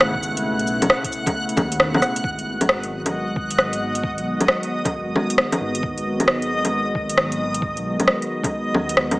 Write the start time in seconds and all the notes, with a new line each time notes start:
Already playing: G#1 B2 C#3 A3 B3 E4 F#5
0.01 cross-stick
0.15 kick
0.23 cabasa
0.37 closed hi-hat
0.59 B1, closed hi-hat
0.67 cabasa
0.82 closed hi-hat, low bongo
0.90 cross-stick
1.04 kick, closed hi-hat
1.12 cabasa
1.26 kick, closed hi-hat, low bongo, cabasa
1.49 closed hi-hat
1.57 D#2, kick, low bongo, cabasa
1.72 closed hi-hat
1.80 cross-stick
1.94 low bongo
2.02 cross-stick, cabasa
2.16 closed hi-hat
2.24 G#1 D#3 F#3 G#3 B3 F#4 D#5, kick
2.39 closed hi-hat
2.61 closed hi-hat, low bongo
2.69 cross-stick
2.83 closed hi-hat
3.06 closed hi-hat, low bongo
3.36 kick
3.51 closed hi-hat
3.59 cross-stick
3.73 closed hi-hat
3.95 closed hi-hat
4.03 kick
4.17 B1, closed hi-hat
4.41 closed hi-hat, low bongo
4.48 cross-stick
4.63 closed hi-hat
4.85 kick, closed hi-hat, low bongo
4.93 G#1
5.16 low bongo
5.30 closed hi-hat
5.38 cross-stick
5.52 closed hi-hat, low bongo
5.60 G#1
5.75 closed hi-hat
5.83 G#1, kick
5.98 closed hi-hat
6.20 closed hi-hat, low bongo
6.28 cross-stick
6.42 closed hi-hat
6.65 closed hi-hat, low bongo
6.95 kick
7.09 closed hi-hat
7.18 cross-stick
7.32 closed hi-hat
7.54 closed hi-hat
7.62 kick
7.77 B1, closed hi-hat
8.00 closed hi-hat, low bongo
8.08 cross-stick
8.22 closed hi-hat
8.44 kick, closed hi-hat, low bongo
8.73 D#2, low bongo
8.89 closed hi-hat
8.97 cross-stick
9.11 closed hi-hat, low bongo